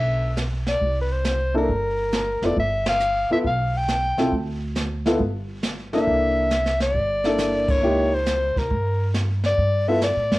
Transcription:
Already playing: B1 B3 D4 F4 A4 E5
0.37 snare, hi-hat pedal
0.67 D5, snare
0.81 C2, brush sweep, kick
1.01 B4
1.12 C5
1.25 snare, hi-hat pedal
1.54 A#3 D4 E4 A4 A#4
1.68 G1, brush sweep, kick
2.12 snare, hi-hat pedal
2.42 F1 B3 E4 F4 A4 D5, snare
2.56 G1 E5, brush sweep, kick
2.86 F5, snare, ride
3.00 hi-hat pedal
3.30 B3 E4 F4 A4 E5, muted upright bass stroke
3.44 B1 F5, brush sweep, kick
3.77 G5
3.88 snare, hi-hat pedal
4.17 C2 C4 E4 F4 A4, snare
4.32 D2, brush sweep, kick
4.75 snare, hi-hat pedal
5.06 B3 E4 F4 A4, snare
5.19 G1, brush sweep, kick
5.63 snare, hi-hat pedal
5.93 A#3 D4 E4 A4 E5, snare
6.07 C2, brush sweep, kick
6.51 snare, hi-hat pedal
6.66 snare
6.80 D5, snare
6.95 G1, brush sweep, kick
7.24 A#3 D4 E4 A4, snare
7.38 snare, hi-hat pedal
7.68 C#5, kick, ride
7.82 C#2 A#3 D#4 E4 G4, brush sweep
8.15 C5
8.26 snare, hi-hat pedal
8.56 C2 A#4, kick, snare
8.70 G2, brush sweep, kick
9.14 snare, hi-hat pedal
9.44 D5, snare
9.58 G2, brush sweep, kick
9.88 B3 E4 F4 A4 E5
10.01 D5, snare, hi-hat pedal
10.16 A2
10.31 F#2, snare

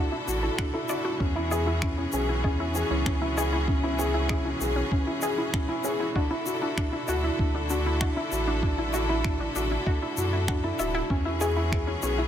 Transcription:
Already playing: D3 D4 E4 F#4 A4
0.12 E4
0.28 A1 F#4, shaker
0.43 E4 A4
0.58 D4 F#5, finger snap, kick
0.74 E4 A4
0.89 F#4 D5, low woodblock, shaker
1.05 E4 F#4
1.20 E2 E3 B3 C#4 G#4, kick
1.36 E4
1.51 G#4, low woodblock, shaker
1.67 E4
1.82 C#4, finger snap, kick
1.98 C#4 E4
2.12 B1 C#4 G#4, shaker
2.29 E4
2.44 E2 C#4 G#4, kick, low woodblock
2.60 E4
2.75 G#4, shaker
2.90 C#2 C#4 E4
3.06 C#4, finger snap, kick
3.22 E4
3.37 G#4, low woodblock, shaker
3.53 E4
3.68 C#4, kick
3.83 C#4 E4
3.99 C#4 G#4, shaker
4.14 E4
4.29 C#4 G#4, finger snap, kick, low woodblock
4.45 E4
4.61 B1 G#4, shaker
4.76 C#4 E4
4.92 C#4, kick
5.07 E4
5.22 G#4, low woodblock, shaker
5.38 E4
5.53 C#4, finger snap, kick
5.69 C#4 E4
5.84 C#4 G#4, shaker
6.00 E4
6.15 D3 D4 E4 F#4 A4, kick, low woodblock
6.30 E4
6.46 F#4, shaker
6.61 D4 E4
6.77 D4, finger snap, kick
6.92 E4
7.08 D2 F#4, low woodblock, shaker
7.23 E4
7.39 D2 D4, kick
7.55 D4 E4
7.70 D4 F#4, shaker
7.86 E4
8.01 D4 F#4, finger snap, kick, low woodblock
8.16 E4
8.32 A1 F#4, shaker
8.47 D4 E4
8.63 D4, kick
8.78 E4
8.93 F#4, low woodblock, shaker
9.09 E4
9.24 D4, finger snap, kick
9.40 D4 E4
9.56 A1 D4 F#4, shaker
9.71 E4
9.86 D4 F#4, kick, low woodblock
10.02 E4
10.17 F#2 F#4, shaker
10.33 E4
10.48 D4 F#4, finger snap, kick
10.64 E4 A4
10.79 D1 F#4 E5, low woodblock, shaker
10.95 E4
11.09 E2 E3 B3 C#4 F#4 G#4, kick
11.25 E4
11.41 G#4, low woodblock, shaker
11.56 E4
11.72 G#4, finger snap, kick
11.87 C#4 E4
12.03 B1 C#4 G#4, shaker
12.18 E4

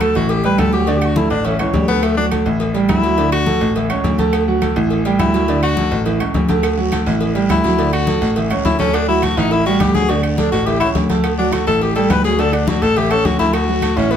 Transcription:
0.01 A3 A4 A5, cowbell, high conga, low agogo, claves
0.15 A1 E3 E4 F#4 E5, high conga, low agogo
0.29 G4, cowbell, high conga
0.44 G3 G4 B4 G5, cowbell, high conga
0.58 D2 A4, cowbell, high conga, low agogo, claves
0.73 F#3 F#4 G4 F#5, cowbell
0.87 D3 D4 F#4 D5, cowbell, high conga, low agogo
0.97 G4
1.02 high conga, low agogo, claves
1.06 F#4
1.16 A3 E4 A4 A5, cowbell, high conga
1.30 A1 D4, high conga, low agogo
1.45 E3 C#4 E4 E5, cowbell, high conga, low agogo
1.59 C#2 E3 C#4 C#5 C#6, high conga, low agogo, claves
1.74 D2 G3, cowbell, high conga
1.88 A3 B3 A4 A5, cowbell, high conga, low agogo
2.03 A3, cowbell, high conga, low agogo, claves
2.17 F#3 D4 F#4 F#5, high conga
2.31 A3 A4 A5, cowbell, high conga, low agogo, claves
2.45 A1 E3 E4 E5, low agogo
2.60 cowbell, high conga
2.74 G3 G4 G5, cowbell, high conga
2.89 D2 E4, cowbell, high conga, low timbale, low agogo, claves
3.03 F#3 F#4 F#5, cowbell
3.18 D3 D4 D5, cowbell, high conga, low agogo
3.32 F#4, high conga, low agogo, claves
3.46 A3 A4 A5, cowbell, high conga
3.61 A1, high conga, low agogo
3.75 E3 E4 E5, cowbell, high conga, low agogo
3.90 C#2 C#4 C#5 C#6, high conga, low agogo, claves
4.04 D2, cowbell, high conga
4.18 A3 A4 A5, cowbell, high conga, low agogo
4.33 cowbell, high conga, low agogo, claves
4.48 F#3 F#4 F#5, high conga
4.62 A3 A4 A5, cowbell, high conga, low agogo, claves
4.76 A1 E3 E4 E5, high conga, low agogo
4.90 cowbell, high conga
5.05 G3 G4 G5, cowbell, high conga
5.19 D2 E4, cowbell, high conga, low timbale, low agogo, claves
5.34 F#3 F#4 F#5, cowbell
5.48 D3 D4 D5, cowbell, high conga, low agogo
5.62 F#4, high conga, low agogo, claves
5.77 A3 A4 A5, cowbell, high conga
5.91 A1, low agogo
6.06 E3 E4 E5, cowbell, high conga, low agogo
6.20 C#2 C#4 C#5 C#6, high conga, low agogo, claves
6.34 D2, cowbell, high conga, low timbale
6.49 A3 A4 A5, cowbell, high conga, low agogo
6.63 cowbell, high conga, low agogo, long guiro, claves
6.77 F#3 F#4 F#5, high conga
6.92 A3 A4 A5, cowbell, high conga, low agogo, short guiro, claves
7.06 A1 E3 E4 E5, low agogo, short guiro
7.21 cowbell, high conga, long guiro
7.35 G3 G4 G5, cowbell, high conga
7.49 D2 E4, cowbell, high conga, low timbale, low agogo, short guiro, claves
7.64 F#3 F#4 F#5, cowbell, high conga, short guiro
7.78 D3 D4 D5, cowbell, high conga, low agogo, long guiro
7.93 F#4, low agogo, claves
8.07 A3 A4 A5, cowbell, high conga, short guiro
8.21 A1, high conga, low agogo, short guiro
8.36 E3 E4 E5, cowbell, low agogo, long guiro
8.50 C#2 C#4 C#5 C#6, high conga, low agogo, claves
8.65 D2 E4, cowbell, high conga, low timbale, short guiro
8.79 A3 C#4 A4 A5, cowbell, high conga, low agogo, short guiro
8.94 D4, cowbell, high conga, low agogo, long guiro, claves
9.08 F#3 E4 F#4 F#5, high conga
9.22 A3 F#4 A4 A5, cowbell, high conga, low agogo, short guiro, claves
9.37 A1 E3 D#4 E4 E5, high conga, low agogo, short guiro
9.51 E4, cowbell, high conga, long guiro
9.66 G3 F#4 G4 G5, cowbell, high conga
9.80 D2 G4, cowbell, high conga, low agogo, short guiro, claves
9.94 F#3 F#4 G#4 F#5, cowbell, high conga, short guiro
10.09 D3 D4 F#4 D5, cowbell, high conga, low agogo, long guiro
10.23 A3, high conga, low agogo, claves
10.38 A3 D4 A4 A5, cowbell, high conga, short guiro
10.52 A1 F#4, high conga, low agogo, short guiro
10.66 E3 E4 G4 E5, cowbell, high conga, low agogo, long guiro
10.80 C#2 C#4 E4 C#5 C#6, high conga, low agogo, claves
10.95 D2, cowbell, high conga, low timbale, short guiro
11.09 A3 A4 A5, cowbell, high conga, low agogo, short guiro
11.24 cowbell, high conga, low agogo, long guiro, claves
11.38 F#3 D4 F#4 F#5, high conga
11.52 A3 F#4 A4 A5, cowbell, high conga, low agogo, short guiro, claves
11.67 A1 E3 E4 A4 E5, high conga, low agogo, short guiro
11.81 G4, cowbell, high conga, long guiro
11.95 G3 G4 A4 G5, cowbell, high conga
12.10 D2 B4, cowbell, high conga, low agogo, short guiro, claves
12.24 F#3 F#4 G#4 F#5, cowbell, short guiro
12.39 D3 D4 A4 D5, cowbell, high conga, low agogo, long guiro
12.53 D4, high conga, low agogo, claves
12.68 A3 F#4 A4 A5, cowbell, high conga, short guiro
12.82 A1 A4, low agogo, short guiro
12.96 E3 E4 G4 E5, cowbell, high conga, low agogo, long guiro
13.11 C#4 A4 C#5 C#6, high conga, low agogo, claves
13.25 D2 F#4, cowbell, high conga, short guiro
13.39 A3 E4 A4 A5, cowbell, high conga, low agogo, short guiro
13.53 F#4, cowbell, high conga, low agogo, long guiro, claves
13.68 F#3 F#4 F#5, high conga
13.82 A3 A4 A5, cowbell, high conga, low agogo, short guiro, claves
13.96 A1 E3 C#4 E4 E5, high conga, low agogo, short guiro
14.11 B3, cowbell, high conga, long guiro

